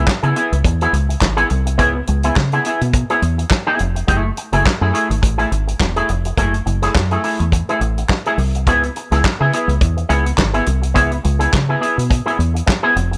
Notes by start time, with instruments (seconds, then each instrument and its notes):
0.07 muted clean electric guitar stroke, kick, snare, clap
0.23 fingered electric bass C#3, clean electric guitar B3 E4 G#4, closed hi-hat
0.36 clean electric guitar B3 E4 G#4, closed hi-hat
0.52 fingered electric bass C#2, muted clean electric guitar stroke, closed hi-hat
0.64 fingered electric bass E2, muted clean electric guitar stroke, kick, closed hi-hat
0.81 clean electric guitar B3 E4 G#4, closed hi-hat
0.93 fingered electric bass C#2, muted clean electric guitar stroke, closed hi-hat
1.09 muted clean electric guitar stroke, closed hi-hat
1.21 fingered electric bass G#1, muted clean electric guitar stroke, kick, snare, clap
1.37 clean electric guitar B3 E4 G#4, closed hi-hat
1.50 fingered electric bass C2, muted clean electric guitar stroke, closed hi-hat
1.66 muted clean electric guitar stroke, closed hi-hat
1.78 fingered electric bass C#2, clean electric guitar B3 E4 G#4, kick, closed hi-hat
1.95 muted clean electric guitar stroke
2.07 fingered electric bass C#2, muted clean electric guitar stroke, closed hi-hat
2.23 clean electric guitar B3 E4 G#4, closed hi-hat
2.36 fingered electric bass C#3, muted clean electric guitar stroke, kick, snare, clap
2.52 clean electric guitar B3 E4 G#4, closed hi-hat
2.65 clean electric guitar B3 E4 G#4, closed hi-hat
2.81 fingered electric bass B2, muted clean electric guitar stroke, closed hi-hat
2.93 muted clean electric guitar stroke, kick, closed hi-hat
3.10 clean electric guitar B3 E4 G#4, closed hi-hat
3.22 fingered electric bass E2, muted clean electric guitar stroke, closed hi-hat
3.38 muted clean electric guitar stroke, closed hi-hat
3.51 muted clean electric guitar stroke, kick, snare, clap
3.67 clean electric guitar B3 E4 G#4
3.79 fingered electric bass F1, muted clean electric guitar stroke, closed hi-hat
3.95 muted clean electric guitar stroke, closed hi-hat
4.07 fingered electric bass F#1, clean electric guitar A3 E4 G#4, kick, closed hi-hat
4.24 muted clean electric guitar stroke
4.37 muted clean electric guitar stroke, closed hi-hat
4.53 fingered electric bass F#1, clean electric guitar A3 E4 G#4, closed hi-hat
4.66 muted clean electric guitar stroke, kick, snare, clap
4.81 fingered electric bass F#2, clean electric guitar A3 E4 G#4
4.93 clean electric guitar A3 E4 G#4, closed hi-hat
5.10 fingered electric bass G#1, muted clean electric guitar stroke, closed hi-hat
5.22 fingered electric bass A1, muted clean electric guitar stroke, kick, closed hi-hat
5.38 clean electric guitar A3 E4 G#4, closed hi-hat
5.51 fingered electric bass G#1, muted clean electric guitar stroke, closed hi-hat
5.67 muted clean electric guitar stroke, closed hi-hat
5.80 fingered electric bass E1, muted clean electric guitar stroke, kick, snare, clap
5.96 clean electric guitar A3 E4 G#4, closed hi-hat
6.09 fingered electric bass F1, muted clean electric guitar stroke, closed hi-hat
6.25 muted clean electric guitar stroke, closed hi-hat
6.37 fingered electric bass F#1, clean electric guitar A3 E4 G#4, kick, closed hi-hat
6.54 muted clean electric guitar stroke, closed hi-hat
6.66 fingered electric bass F#1, muted clean electric guitar stroke, closed hi-hat
6.82 clean electric guitar A3 E4 G#4, snare, closed hi-hat
6.94 fingered electric bass F#2, muted clean electric guitar stroke, kick, snare, clap
7.11 clean electric guitar A3 E4 G#4, closed hi-hat
7.24 clean electric guitar A3 E4 G#4, open hi-hat
7.40 fingered electric bass E2, muted clean electric guitar stroke, closed hi-hat
7.52 muted clean electric guitar stroke, kick, closed hi-hat
7.69 clean electric guitar A3 E4 G#4, closed hi-hat
7.81 fingered electric bass A1, muted clean electric guitar stroke, closed hi-hat
7.98 muted clean electric guitar stroke, closed hi-hat
8.09 muted clean electric guitar stroke, kick, snare, clap
8.26 clean electric guitar A3 E4 G#4, closed hi-hat
8.38 fingered electric bass C2, muted clean electric guitar stroke, open hi-hat
8.55 muted clean electric guitar stroke, closed hi-hat
8.67 fingered electric bass C#2, clean electric guitar B3 E4 G#4, kick, closed hi-hat
8.83 muted clean electric guitar stroke, closed hi-hat
8.96 muted clean electric guitar stroke, closed hi-hat
9.11 fingered electric bass C#2, clean electric guitar B3 E4 G#4, snare, closed hi-hat
9.24 muted clean electric guitar stroke, kick, snare, clap
9.40 fingered electric bass C#3, clean electric guitar B3 E4 G#4
9.53 clean electric guitar B3 E4 G#4, closed hi-hat
9.68 fingered electric bass C#2, muted clean electric guitar stroke, closed hi-hat
9.81 fingered electric bass E2, kick, closed hi-hat
9.97 muted clean electric guitar stroke, closed hi-hat
10.09 fingered electric bass C#2, clean electric guitar B3 E4 G#4, closed hi-hat
10.25 muted clean electric guitar stroke, closed hi-hat
10.37 fingered electric bass G#1, muted clean electric guitar stroke, kick, snare, clap
10.54 clean electric guitar B3 E4 G#4, closed hi-hat
10.66 fingered electric bass C2, muted clean electric guitar stroke, closed hi-hat
10.82 muted clean electric guitar stroke, closed hi-hat
10.94 fingered electric bass C#2, clean electric guitar B3 E4 G#4, kick, closed hi-hat
11.11 muted clean electric guitar stroke, closed hi-hat
11.24 fingered electric bass C#2, muted clean electric guitar stroke, closed hi-hat
11.39 clean electric guitar B3 E4 G#4, closed hi-hat
11.52 fingered electric bass C#3, muted clean electric guitar stroke, kick, snare, clap
11.69 clean electric guitar B3 E4 G#4
11.81 clean electric guitar B3 E4 G#4, closed hi-hat
11.97 fingered electric bass B2, muted clean electric guitar stroke, closed hi-hat
12.10 muted clean electric guitar stroke, kick, closed hi-hat
12.26 clean electric guitar B3 E4 G#4, closed hi-hat
12.39 fingered electric bass E2, muted clean electric guitar stroke, closed hi-hat
12.54 muted clean electric guitar stroke, closed hi-hat
12.66 muted clean electric guitar stroke, kick, snare, clap
12.83 clean electric guitar B3 E4 G#4
12.95 fingered electric bass F1, muted clean electric guitar stroke, closed hi-hat
13.11 muted clean electric guitar stroke, closed hi-hat